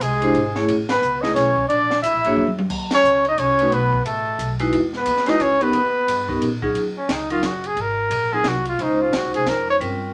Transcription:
0.00 upright bass C2, trombone G#3, trumpet G#4, kick, hi-hat pedal, ride
0.22 vibraphone G#3 D4 E4 G4 C5, ride
0.34 upright bass G#1, kick, ride
0.55 vibraphone A3 C#4 E4 G#4 C#5, snare
0.68 upright bass A1, kick, ride
0.89 trombone B3, trumpet B4, snare, ride
1.02 upright bass C#2, hi-hat pedal
1.21 vibraphone A3 C#4 E4 G#4 B4, trombone D#4, trumpet D#5, snare
1.34 upright bass B1, trombone C#4, trumpet C#5, kick, snare, hi-hat pedal, ride
1.56 kick
1.68 upright bass A#1, trombone D4, trumpet D5, kick, ride
1.91 snare
2.02 upright bass D2, trombone E4, trumpet E5, kick, hi-hat pedal, ride
2.14 upright bass A#1
2.24 upright bass G#1, vibraphone A#3 D4 F#4 G#4 C#5, ride
2.37 upright bass E2, mid tom
2.47 mid tom
2.59 mid tom
2.70 upright bass D#2, kick, crash
2.91 trombone C#4, trumpet C#5, snare, ride
3.03 upright bass C#2, hi-hat pedal
3.25 trombone D#4, trumpet D#5, ride
3.38 upright bass C2, trombone C#4, trumpet C#5, kick, hi-hat pedal, ride
3.59 vibraphone A3 C#4 D#4 F#4 B4, ride
3.71 upright bass B1, trombone B3, trumpet B4, kick, ride
3.93 kick
4.05 upright bass A1, trombone A3, trumpet A4, kick, ride
4.39 upright bass B1, kick, hi-hat pedal, ride
4.59 vibraphone G#3 D#4 E4 F#4 B4, ride
4.72 upright bass E2, kick, ride
4.93 trombone B3, trumpet B4, snare
5.06 upright bass D#2, kick, hi-hat pedal, ride
5.17 snare
5.26 vibraphone G#3 D#4 E4 F#4 B4, trombone D#4, trumpet D#5, snare, ride
5.39 upright bass C#2, trombone C#4, trumpet C#5, kick, hi-hat pedal, ride
5.60 vibraphone B3 C#4 D#4 G4 A#4, trombone B3, trumpet B4, ride
5.73 upright bass D#2, kick, ride
6.08 upright bass G2, kick, hi-hat pedal, ride
6.28 vibraphone B3 C#4 D#4 G4 A#4, kick
6.41 upright bass A#2, kick, ride
6.62 vibraphone F#3 C#4 D#4 F4 G#4, kick
6.75 upright bass D#2, kick, ride
6.98 trumpet C#4
7.09 upright bass C#2, trumpet D#4, kick, snare, hi-hat pedal, ride
7.30 vibraphone F#3 C#4 D#4 F4 A#4, trumpet F4, ride
7.43 upright bass F#1, trumpet F#4, kick, snare, hi-hat pedal, ride
7.64 trumpet G#4, ride
7.76 upright bass G#1, kick, ride
7.81 trumpet A#4
8.10 upright bass A#1, kick, ride
8.32 vibraphone F#3 C4 D#4 F4 A#4, trumpet G#4
8.44 upright bass C2, kick, snare, hi-hat pedal, ride
8.48 trumpet F#4
8.65 trumpet F4, ride
8.79 upright bass C#2, vibraphone G#3 C#4 D#4 F4 C5, trumpet D#4, kick, ride
9.02 trumpet F4
9.13 upright bass D#2, trumpet F#4, kick, snare, hi-hat pedal, ride
9.24 upright bass C#2
9.34 upright bass C2, trumpet G#4, ride
9.46 upright bass F2, trumpet A#4, kick, snare, hi-hat pedal, ride
9.70 trumpet C#5
9.80 upright bass G2, vibraphone G3 C4 C#4 F4 A#4, kick, ride

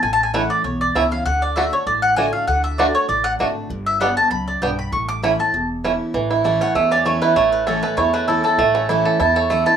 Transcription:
0.03 upright bass A1, steel-string acoustic guitar A2, mandolin G#5
0.13 mandolin A5
0.23 mandolin G#5
0.33 steel-string acoustic guitar E3 A3 C#4 E4, five-string banjo A3 C#4 E4, mandolin F#5
0.50 mandolin D5
0.64 upright bass B1, steel-string acoustic guitar E2, mandolin C#5
0.81 mandolin D5
0.95 upright bass C#2, steel-string acoustic guitar E3 A3 C#4 E4, five-string banjo A3 C#4 E4, mandolin E5
1.11 steel-string acoustic guitar C#4 E4, mandolin F5
1.25 upright bass D2, steel-string acoustic guitar D3, mandolin F#5
1.42 mandolin D5
1.56 steel-string acoustic guitar D3 A3 D4 F#4, five-string banjo A3 D4 F#4, mandolin E5
1.72 steel-string acoustic guitar D4 F#4, mandolin C#5
1.86 upright bass A1, steel-string acoustic guitar A2, mandolin D5
2.02 mandolin F#5
2.16 steel-string acoustic guitar D3 A3 D4 F#4, five-string banjo A3 D4 F#4, mandolin G#5
2.33 steel-string acoustic guitar D4 F#4, mandolin F5
2.47 upright bass D2, steel-string acoustic guitar D3, mandolin F#5
2.64 mandolin E5
2.78 steel-string acoustic guitar D3 A3 D4 F#4, five-string banjo A3 D4 F#4, mandolin D5
2.95 mandolin C#5
3.09 upright bass A1, steel-string acoustic guitar A2, mandolin D5
3.24 mandolin F#5
3.39 upright bass G#1, steel-string acoustic guitar D3 A3 D4 F#4, five-string banjo A3 D4 F#4
3.70 upright bass G1, steel-string acoustic guitar G2
3.86 mandolin E5
4.00 steel-string acoustic guitar D3 G3 B3 G4, five-string banjo B3 D4 G4, mandolin F#5
4.17 steel-string acoustic guitar B3 G4, mandolin A5
4.31 upright bass C#2, steel-string acoustic guitar F#2, mandolin B5
4.48 mandolin D5
4.62 upright bass B1, steel-string acoustic guitar G2, five-string banjo B3 D4 G4, mandolin G5
4.79 mandolin B5
4.92 upright bass A1, steel-string acoustic guitar A2, mandolin C#6
5.08 mandolin D6
5.23 steel-string acoustic guitar E3 A3 C#4 E4, five-string banjo A3 C#4 E4, mandolin B5
5.39 steel-string acoustic guitar C#4 E4, mandolin A5
5.53 upright bass E1, steel-string acoustic guitar E2
5.84 steel-string acoustic guitar E3 A3 C#4 E4, five-string banjo A3 C#4 E4
6.14 upright bass A1, steel-string acoustic guitar A2, five-string banjo E3
6.31 five-string banjo E4
6.44 steel-string acoustic guitar E3 A3 C#4 E4, five-string banjo A3
6.61 five-string banjo C#4, steel-string acoustic guitar C#4 E4, mandolin F#5
6.75 upright bass E2, steel-string acoustic guitar E2, five-string banjo A3, mandolin E5
6.91 five-string banjo C#4, mandolin D5
7.05 steel-string acoustic guitar E3 A3 C#4 E4, five-string banjo A3, mandolin C#5
7.22 five-string banjo E4, mandolin B4
7.36 upright bass A1, steel-string acoustic guitar A2, five-string banjo A3, mandolin C#5
7.52 mandolin B4
7.67 steel-string acoustic guitar E3 A3 C#4 E4, five-string banjo C#4, mandolin A4
7.83 steel-string acoustic guitar C#4 E4, five-string banjo A4, mandolin B4
7.97 upright bass E2, steel-string acoustic guitar E2, five-string banjo E4, mandolin C#5
8.14 five-string banjo A3, mandolin B4
8.28 steel-string acoustic guitar E3 A3 C#4 E4, five-string banjo E4, mandolin A4
8.44 steel-string acoustic guitar C#4 E4, mandolin A4, five-string banjo A4
8.58 upright bass A1, steel-string acoustic guitar A2, five-string banjo A3
8.75 five-string banjo C#4
8.89 steel-string acoustic guitar E3 A3 C#4 E4, five-string banjo E4
9.05 five-string banjo A4
9.20 upright bass E2, steel-string acoustic guitar E2, five-string banjo E4, mandolin A5
9.36 five-string banjo A4, mandolin C#5
9.50 steel-string acoustic guitar E3 A3 C#4 E4, five-string banjo A3, mandolin E5
9.66 steel-string acoustic guitar C#4 E4, five-string banjo E4, mandolin A5

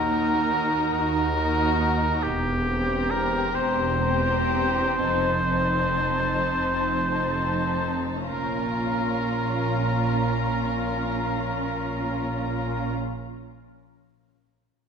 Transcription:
Already playing: double bass section D#2, cello section D#2, oboe A#4
0.10 viola section D#4, violin section F#4 A#5
0.93 double bass section D#2, cello section D#2, oboe A#4
1.35 viola section D#4, violin section F#4 A#5
2.23 double bass section E1, cello section E2, oboe G4
2.67 viola section C4, violin section G4 A#5
3.11 oboe A#4
3.55 double bass section E1, cello section E2, oboe C5
4.03 viola section C4, violin section G4 A#5
4.99 double bass section F1, cello section F2, viola section C4, violin section D#4 A5
5.48 viola section C4, violin section D#4 A5
6.54 double bass section F1, cello section F2
7.11 viola section C4, violin section D#4 A5
8.28 double bass section A#1, cello section A#2, viola section C#4, violin section F4 A#5, oboe A#4

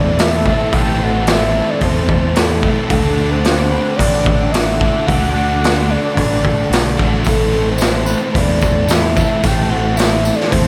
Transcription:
Already playing: picked electric bass E2, distorted electric guitar A2 E3 A3, overdriven electric guitar A2 E3 A3 C4 E4, clean electric guitar A3 C4 E4 B4, analog synth pad A4 A5, soft synth lead D5
0.17 distorted electric guitar A2 E3 A3, clean electric guitar E4, soft synth lead E5, snare, open hi-hat
0.44 overdriven electric guitar A2 E3 A3 C4 E4, distorted electric guitar E3 A3, clean electric guitar A3, kick
0.70 picked electric bass A1, distorted electric guitar A2 E3 A3, overdriven electric guitar A2 E3 A3 C4 E4, clean electric guitar A3, soft synth lead G5, kick, open hi-hat
0.99 distorted electric guitar E3 A3, clean electric guitar C4, soft synth lead F#5
1.25 distorted electric guitar A2 E3 A3, clean electric guitar E4, snare, open hi-hat
1.30 soft synth lead E5
1.53 distorted electric guitar E3 A3
1.70 soft synth lead D5
1.79 picked electric bass E2, distorted electric guitar A2 E3 A3, clean electric guitar C4, kick, open hi-hat
1.84 soft synth lead C5
2.08 distorted electric guitar E3 A3, clean electric guitar A3, kick
2.35 distorted electric guitar A2 E3 A3, clean electric guitar E4, soft synth lead A4, snare, open hi-hat
2.62 overdriven electric guitar A2 A3 C4 E4, distorted electric guitar E3 A3, clean electric guitar A3, kick
2.66 overdriven electric guitar E3
2.89 picked electric bass D2, distorted electric guitar D3 A3 D4, overdriven electric guitar D3 A3 D4 F#4, clean electric guitar A3, soft synth lead A4, analog synth pad A4 F#5 D6, kick, open hi-hat
3.17 distorted electric guitar A3 D4, clean electric guitar D4
3.31 soft synth lead C5
3.43 distorted electric guitar D3 A3 D4, clean electric guitar F#4, soft synth lead C5, snare, open hi-hat
3.71 distorted electric guitar A3 D4, clean electric guitar B4
3.96 picked electric bass A1, distorted electric guitar D3 A3 D4, clean electric guitar D4, soft synth lead D5, kick
4.00 open hi-hat
4.26 clean electric guitar A3, distorted electric guitar A3 D4, kick
4.52 distorted electric guitar D3 A3 D4, clean electric guitar F#4, soft synth lead E5, snare, open hi-hat
4.79 overdriven electric guitar D3 A3 D4 F#4, clean electric guitar A3, distorted electric guitar A3 D4, kick
5.06 picked electric bass D2, distorted electric guitar D3 A3 D4, overdriven electric guitar D3 A3 D4 F#4, clean electric guitar A3, soft synth lead F#5, kick, open hi-hat
5.34 distorted electric guitar A3 D4, clean electric guitar D4, soft synth lead F#5
5.60 distorted electric guitar D3 A3 D4, clean electric guitar F#4, open hi-hat
5.65 snare
5.88 distorted electric guitar A3 D4, clean electric guitar B4, soft synth lead D5
6.14 picked electric bass A1, distorted electric guitar D3 A3 D4, clean electric guitar D4, soft synth lead D5, kick, open hi-hat
6.43 clean electric guitar A3, distorted electric guitar A3 D4, kick
6.69 picked electric bass B1, distorted electric guitar D3 A3 D4, clean electric guitar F#4, open hi-hat
6.74 snare
6.97 picked electric bass A1, overdriven electric guitar D3 A3 D4 F#4, clean electric guitar A3, distorted electric guitar A3 D4, kick
7.24 picked electric bass A1, distorted electric guitar A2 E3 A3, overdriven electric guitar A2 E3 A3 C4 E4, clean electric guitar A3, soft synth lead A4, analog synth pad A5, kick, open hi-hat, tambourine
7.53 distorted electric guitar E3 A3, clean electric guitar C4, tambourine
7.70 soft synth lead C5
7.78 distorted electric guitar A2 E3 A3, clean electric guitar E4, snare, open hi-hat, tambourine
7.84 soft synth lead C5
8.06 distorted electric guitar E3 A3, clean electric guitar B4, tambourine
8.33 picked electric bass E2, distorted electric guitar A2 E3 A3, clean electric guitar C4, kick, open hi-hat, tambourine
8.38 soft synth lead D5
8.61 distorted electric guitar E3 A3, clean electric guitar A3, kick, tambourine
8.88 distorted electric guitar A2 E3 A3, clean electric guitar E4, soft synth lead E5, snare, open hi-hat, tambourine
9.14 distorted electric guitar E3 A3, overdriven electric guitar E3 A3 C4 E4, clean electric guitar A3, kick, tambourine
9.18 overdriven electric guitar A2
9.42 picked electric bass A1, distorted electric guitar A2 E3 A3, overdriven electric guitar A2 E3 A3 C4 E4, clean electric guitar A3, soft synth lead G5, kick, open hi-hat, tambourine
9.68 distorted electric guitar E3 A3, clean electric guitar C4, soft synth lead F#5
9.95 distorted electric guitar A2 E3 A3, clean electric guitar E4, soft synth lead E5, open hi-hat, tambourine
10.00 snare
10.23 distorted electric guitar E3 A3, tambourine
10.35 soft synth lead D5
10.40 snare
10.51 picked electric bass E2, distorted electric guitar A2 E3 A3, clean electric guitar C4, soft synth lead C5, kick, open hi-hat, tambourine

